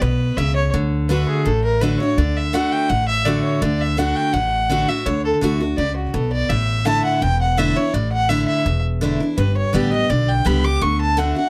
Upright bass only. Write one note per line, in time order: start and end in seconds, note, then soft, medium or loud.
0.01 0.32 B1 medium
0.37 0.68 C#2 medium
0.74 1.24 D2 medium
1.46 1.96 A1 medium
2.18 2.68 D2 medium
2.90 3.40 A1 medium
3.62 4.12 D2 medium
4.34 4.84 A1 medium
5.06 5.31 D2 medium
5.42 5.73 D2 medium
5.78 6.09 C#2 medium
6.14 6.45 B1 medium
6.50 7.00 A1 medium
7.22 7.72 E1 medium
7.94 8.44 A1 medium
8.66 9.16 E1 medium
9.38 9.63 G1 medium
9.74 10.04 A1 medium
10.10 10.41 B1 medium
10.46 10.76 C#2 medium
10.81 11.31 D2 medium